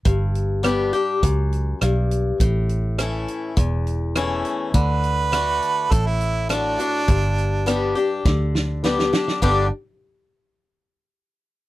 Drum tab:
RD |----------------|----------------|----------------|----------------|
HH |x-x-x-x-x-x-x-x-|x-x-x-x-x-x-x-x-|x-x-x-x-x-x-x-x-|x-x-x-x---------|
SD |----r-------r---|----r-------r---|----r-------r---|----r---o-o-oooo|
BD |o-------o-------|o-------o-------|o-------o-------|o-------o-------|

RD |x---------------|
HH |----------------|
SD |----------------|
BD |o---------------|